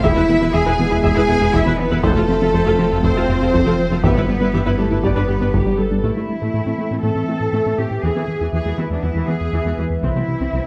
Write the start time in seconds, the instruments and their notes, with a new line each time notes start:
Already playing: analog synth pad E4 E5
0.03 double bass section E1, sub bass E1, analog synth bass E2, synth arpeggio sound E3, analog synth pad G#3 B3, cello section E4, viola section G#4 E5, violin section E5, taiko
0.17 double bass section E1, analog synth bass E2, synth arpeggio sound G#3, viola section E4 B4
0.29 double bass section E1, analog synth bass E3, synth arpeggio sound B3, viola section B3 G#4
0.41 double bass section E1, analog synth bass E3, synth arpeggio sound B3, viola section E4 B4
0.54 double bass section E1, analog synth bass E2, synth arpeggio sound E3, cello section G#4, viola section G#4 E5, violin section G#5
0.66 double bass section E1, analog synth bass E2, synth arpeggio sound E4, viola section E4 B4
0.79 double bass section E1, analog synth bass E3, synth arpeggio sound B3, viola section B3 G#4
0.91 double bass section E1, analog synth bass E2, viola section E4 B4, synth arpeggio sound E4
1.04 double bass section E1, analog synth bass E2, synth arpeggio sound E3, viola section G#4 E5, cello section G#4, violin section G#5, taiko
1.16 double bass section E1, analog synth bass E2, synth arpeggio sound E4, viola section E4 B4
1.29 double bass section E1, analog synth bass E2, viola section B3 G#4, synth arpeggio sound E4
1.41 double bass section E1, analog synth bass E2, synth arpeggio sound G#3, viola section E4 B4
1.53 double bass section E1, analog synth bass E2, synth arpeggio sound E3, cello section E4, viola section G#4 E5, violin section E5, taiko
1.66 double bass section E1, analog synth bass E3, synth arpeggio sound B3, viola section E4 B4
1.78 analog synth bass E3, cello section B3, violin section B4
1.91 double bass section E1, analog synth bass E3, synth arpeggio sound B3, viola section E4 B4
2.03 double bass section F1, sub bass F1, analog synth bass F2, synth arpeggio sound F3, analog synth pad A3 C4 F4 C5, cello section A3, violin section A4, viola section A4 C5, taiko
2.16 double bass section F1, analog synth bass F2, synth arpeggio sound A3, viola section F4 A4
2.28 double bass section F1, analog synth bass F3, synth arpeggio sound C4, viola section C4 F4
2.41 double bass section F1, analog synth bass F3, synth arpeggio sound C4, viola section F4 A4
2.53 double bass section F1, analog synth bass F2, synth arpeggio sound F3, viola section A4 C5
2.66 double bass section F1, analog synth bass F2, synth arpeggio sound F4, viola section F4 A4
2.78 double bass section F1, analog synth bass F3, synth arpeggio sound C4, viola section C4 F4
2.90 double bass section F1, analog synth bass F2, synth arpeggio sound F4, viola section F4 A4
3.03 double bass section F1, analog synth bass F2, synth arpeggio sound F3, cello section C4, viola section A4 C5, violin section C5, taiko
3.15 double bass section F1, analog synth bass F2, synth arpeggio sound F4, viola section F4 A4
3.28 double bass section F1, analog synth bass F2, viola section C4 F4, synth arpeggio sound F4
3.41 double bass section F1, analog synth bass F2, synth arpeggio sound A3, viola section F4 A4
3.53 double bass section F1, analog synth bass F2, synth arpeggio sound F3, viola section A4 C5, taiko
3.66 double bass section F1, analog synth bass F3, synth arpeggio sound C4, viola section F4 A4
3.79 analog synth bass F3
3.91 double bass section F1, analog synth bass F3, synth arpeggio sound C4, viola section F4 A4
4.03 double bass section G1, sub bass G1, analog synth bass G2, synth arpeggio sound E3, analog synth pad G3 G4 B4, cello section B3, viola section G4 E5, violin section B4, taiko
4.16 double bass section G1, analog synth bass G2, synth arpeggio sound G3, viola section E4 B4
4.28 double bass section G1, analog synth bass G3, synth arpeggio sound B3, viola section B3 G4
4.41 double bass section G1, analog synth bass G3, synth arpeggio sound B3, viola section E4 B4
4.53 double bass section G1, analog synth bass G2, synth arpeggio sound E3, viola section G4 E5
4.66 double bass section G1, analog synth bass G2, viola section E4 B4, synth arpeggio sound E4
4.78 double bass section G1, analog synth bass G3, cello section A3, viola section B3 G4, synth arpeggio sound B3, violin section A4
4.91 double bass section G1, analog synth bass G2, viola section E4 B4, synth arpeggio sound E4
5.03 double bass section G1, analog synth bass G2, synth arpeggio sound G3, cello section B3, viola section G4 D5, violin section B4, taiko
5.16 double bass section G1, analog synth bass G2, viola section D4 B4, synth arpeggio sound G4
5.27 double bass section G1, analog synth bass G2, viola section B3 G4, synth arpeggio sound G4
5.41 double bass section G1, analog synth bass G2, synth arpeggio sound B3, viola section D4 B4
5.54 double bass section G1, analog synth bass G2, synth arpeggio sound G3, viola section G4, taiko
5.66 double bass section G1, analog synth bass G3, synth arpeggio sound D4
5.79 analog synth bass G3, viola section A4
5.91 double bass section G1, analog synth bass G3, synth arpeggio sound D4
6.04 analog synth bass A2, analog synth pad E3 C4 A4 E5, synth arpeggio sound A3, viola section A3, cello section E4, taiko
6.16 analog synth bass A3, viola section A3, synth arpeggio sound E4
6.29 analog synth bass A3
6.41 analog synth bass A2, viola section A3, synth arpeggio sound A4
6.54 analog synth bass A2, synth arpeggio sound A3, viola section A3
6.66 analog synth bass A2, viola section A3, synth arpeggio sound C4
6.78 analog synth bass A3, viola section A3, synth arpeggio sound E4
6.91 analog synth bass A2, viola section A3, synth arpeggio sound C4
7.03 analog synth bass A2, viola section A3, synth arpeggio sound A3, cello section A4
7.15 analog synth bass A2, viola section A3, synth arpeggio sound C4
7.28 analog synth bass A3, viola section A3, synth arpeggio sound E4
7.40 analog synth bass A2
7.53 analog synth bass A2, viola section A3, synth arpeggio sound A3
7.66 analog synth bass A2, viola section A3, synth arpeggio sound C4
7.78 analog synth bass A2, viola section A3, synth arpeggio sound C4, cello section G4
7.91 analog synth bass A2
8.03 analog synth bass E2, viola section E3, synth arpeggio sound E3, analog synth pad B3 B4, cello section G#4
8.16 analog synth bass E3, viola section E3, synth arpeggio sound B3
8.28 analog synth bass E3
8.41 analog synth bass E2, viola section E3, synth arpeggio sound E4
8.53 analog synth bass E2, synth arpeggio sound E3, viola section E3, cello section G#4
8.65 analog synth bass E2, viola section E3, synth arpeggio sound G#3
8.78 analog synth bass E3, viola section E3, synth arpeggio sound B3, cello section E4
8.90 analog synth bass E2, viola section E3, synth arpeggio sound G#3, cello section D4
9.03 analog synth bass E2, viola section E3, synth arpeggio sound E3, cello section E4
9.15 analog synth bass E2, viola section E3, synth arpeggio sound G#3
9.28 analog synth bass E3, viola section E3, synth arpeggio sound B3, cello section G#4
9.41 analog synth bass E2
9.53 analog synth bass E2, viola section E3, synth arpeggio sound E3
9.65 analog synth bass E2, viola section E3, synth arpeggio sound G#3
9.78 analog synth bass E2, viola section E3, synth arpeggio sound G#3
9.90 analog synth bass E2
10.03 analog synth bass C2, synth arpeggio sound C3, analog synth pad C4 G4, viola section C4, cello section E4, taiko
10.16 analog synth bass C3, synth arpeggio sound G3, viola section C4
10.28 analog synth bass C3
10.40 analog synth bass C2, viola section C4, synth arpeggio sound C4
10.53 analog synth bass C2, synth arpeggio sound C3, viola section C4